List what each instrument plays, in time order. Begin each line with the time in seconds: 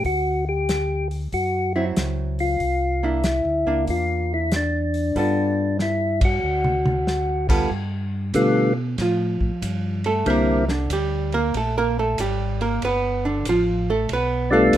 0.04 tonewheel organ D2 F#4, kick, open hi-hat
0.49 tonewheel organ G4
0.69 snare, closed hi-hat
1.11 open hi-hat
1.32 tonewheel organ F#2 F#4, kick, open hi-hat
1.76 hollow-body jazz guitar F#3 C4 E4, tonewheel organ E4
1.97 tonewheel organ C#2, snare, closed hi-hat
2.39 tonewheel organ F4, open hi-hat
2.60 tonewheel organ C2, kick, open hi-hat
3.03 hollow-body jazz guitar A#3 D4 E4, tonewheel organ E4
3.24 snare, closed hi-hat
3.45 tonewheel organ D2
3.66 tonewheel organ C#2, hollow-body jazz guitar A#3 D4
3.87 tonewheel organ E2 F4, kick, open hi-hat
4.34 tonewheel organ E4
4.52 snare, closed hi-hat
4.56 tonewheel organ D4
4.94 open hi-hat
5.16 tonewheel organ G2 D4, hollow-body jazz guitar G3 B3 F4 A4, kick, open hi-hat
5.79 tonewheel organ E4, snare
6.21 tonewheel organ F#4, kick, ride
6.43 tonewheel organ D2
6.64 mid tom
6.86 mid tom
7.07 snare
7.49 hollow-body jazz guitar G3 B3 F4 A4, kick, crash
7.70 tonewheel organ G2, kick
8.34 tonewheel organ B2 D3 G3 A3 B3 F4, kick, hi-hat pedal, ride
8.98 tonewheel organ A2, hollow-body jazz guitar F3 F4, kick, snare, ride
9.41 tonewheel organ A2, kick
9.62 tonewheel organ G2, kick, hi-hat pedal, ride
10.04 hollow-body jazz guitar A3 A4, ride
10.26 tonewheel organ C2 D3 G3 A#3 C4 E4, hollow-body jazz guitar A#3, kick, ride
10.30 hollow-body jazz guitar A#4
10.69 hollow-body jazz guitar D3 D4, snare
10.90 tonewheel organ D2, hollow-body jazz guitar G3 G4, kick, hi-hat pedal, ride
11.32 hollow-body jazz guitar A#3 A#4, ride
11.54 tonewheel organ A#1, hollow-body jazz guitar A3 A4, kick, ride
11.78 hollow-body jazz guitar A#3 A#4
11.99 hollow-body jazz guitar A3 A4
12.18 tonewheel organ G#1, hollow-body jazz guitar G3 G4, kick, hi-hat pedal, ride
12.61 hollow-body jazz guitar A#3 A#4, ride
12.82 tonewheel organ G1, hollow-body jazz guitar B3 B4, kick, ride
13.25 hollow-body jazz guitar D3 D4
13.45 tonewheel organ A1, hollow-body jazz guitar F3 F4, kick, hi-hat pedal, ride
13.90 hollow-body jazz guitar A3 A4
14.09 tonewheel organ B1, kick, ride
14.13 hollow-body jazz guitar B3 B4
14.51 tonewheel organ G3 A3 B3 D4 F4, hollow-body jazz guitar A3 A4
14.73 tonewheel organ C#2, kick, hi-hat pedal, ride